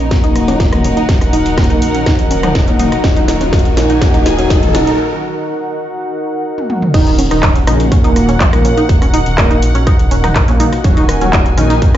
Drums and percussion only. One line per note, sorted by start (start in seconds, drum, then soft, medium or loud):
0.11 kick loud
0.11 snare medium
0.11 closed hi-hat medium
0.24 closed hi-hat soft
0.36 cross-stick soft
0.36 open hi-hat loud
0.48 closed hi-hat soft
0.60 kick loud
0.60 snare medium
0.60 closed hi-hat medium
0.73 cross-stick medium
0.73 closed hi-hat soft
0.73 mid tom medium
0.84 open hi-hat loud
0.97 closed hi-hat soft
1.09 kick loud
1.09 snare medium
1.09 closed hi-hat medium
1.21 cross-stick soft
1.21 open hi-hat medium
1.33 open hi-hat loud
1.46 closed hi-hat soft
1.58 kick loud
1.58 cross-stick medium
1.58 snare medium
1.58 closed hi-hat soft
1.64 closed hi-hat medium
1.70 closed hi-hat soft
1.82 open hi-hat loud
1.95 closed hi-hat soft
2.06 kick loud
2.06 cross-stick soft
2.06 snare medium
2.06 closed hi-hat medium
2.19 closed hi-hat soft
2.31 open hi-hat loud
2.43 cross-stick medium
2.43 closed hi-hat soft
2.43 mid tom medium
2.55 kick loud
2.55 snare medium
2.55 closed hi-hat medium
2.68 closed hi-hat soft
2.79 mid tom medium
2.79 open hi-hat loud
2.92 cross-stick soft
2.92 closed hi-hat soft
3.04 kick loud
3.04 snare medium
3.04 closed hi-hat medium
3.16 closed hi-hat soft
3.28 snare medium
3.28 open hi-hat loud
3.41 closed hi-hat soft
3.53 kick loud
3.53 snare medium
3.53 closed hi-hat soft
3.59 closed hi-hat medium
3.65 closed hi-hat soft
3.77 snare medium
3.77 open hi-hat loud
3.90 closed hi-hat soft
4.02 kick loud
4.02 snare medium
4.02 closed hi-hat medium
4.14 closed hi-hat soft
4.26 snare medium
4.26 open hi-hat loud
4.39 closed hi-hat soft
4.50 kick loud
4.50 snare medium
4.50 closed hi-hat medium
4.63 closed hi-hat soft
4.63 mid tom medium
4.75 snare medium
4.75 open hi-hat loud
4.87 closed hi-hat soft
6.58 high tom medium
6.70 mid tom medium
6.82 mid tom medium
6.94 kick loud
6.94 closed hi-hat medium
6.94 crash loud
7.07 closed hi-hat soft
7.19 open hi-hat loud
7.31 cross-stick medium
7.31 closed hi-hat soft
7.43 kick loud
7.43 clap loud
7.43 closed hi-hat medium
7.56 closed hi-hat soft
7.67 cross-stick medium
7.67 open hi-hat loud
7.80 closed hi-hat soft
7.92 kick loud
7.92 closed hi-hat medium
8.04 closed hi-hat soft
8.16 cross-stick medium
8.16 open hi-hat loud
8.29 closed hi-hat soft
8.40 kick loud
8.40 clap loud
8.40 closed hi-hat medium
8.53 cross-stick medium
8.53 closed hi-hat soft
8.53 mid tom medium
8.65 open hi-hat loud
8.77 closed hi-hat soft
8.89 kick loud
8.89 closed hi-hat medium
9.02 cross-stick medium
9.02 open hi-hat medium
9.14 open hi-hat loud
9.26 closed hi-hat soft
9.38 kick loud
9.38 cross-stick medium
9.38 clap loud
9.38 closed hi-hat medium
9.51 closed hi-hat soft
9.62 open hi-hat loud
9.75 closed hi-hat soft
9.87 kick loud
9.87 cross-stick soft
9.87 closed hi-hat medium
9.99 closed hi-hat soft
10.11 open hi-hat loud
10.24 cross-stick medium
10.24 closed hi-hat soft
10.24 mid tom medium
10.36 kick loud
10.36 clap loud
10.36 closed hi-hat medium
10.48 closed hi-hat soft
10.60 mid tom medium
10.60 open hi-hat loud
10.73 cross-stick soft
10.73 closed hi-hat soft
10.84 kick loud
10.84 closed hi-hat medium
10.97 closed hi-hat soft
11.09 cross-stick medium
11.09 open hi-hat loud
11.21 closed hi-hat soft
11.33 kick loud
11.33 clap loud
11.33 closed hi-hat medium
11.46 closed hi-hat soft
11.58 cross-stick medium
11.58 open hi-hat loud
11.70 closed hi-hat soft
11.82 kick loud
11.82 closed hi-hat medium